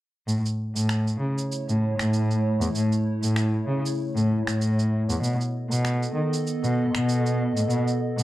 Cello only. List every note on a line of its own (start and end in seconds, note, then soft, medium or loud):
0.27 0.40 A2 medium
0.76 1.15 A2 medium
1.20 1.33 C#3 medium
1.68 1.91 A2 medium
1.99 2.54 A2 medium
2.61 2.71 E2 medium
2.75 2.88 A2 medium
3.23 3.62 A2 medium
3.67 3.81 C#3 medium
4.16 4.38 A2 medium
4.47 5.02 A2 medium
5.09 5.19 E2 medium
5.22 5.35 B2 medium
5.70 6.10 B2 medium
6.15 6.28 D#3 medium
6.63 6.86 B2 medium
6.94 7.49 B2 medium
7.55 7.66 A2 medium
7.69 7.82 B2 medium
8.18 8.23 B2 medium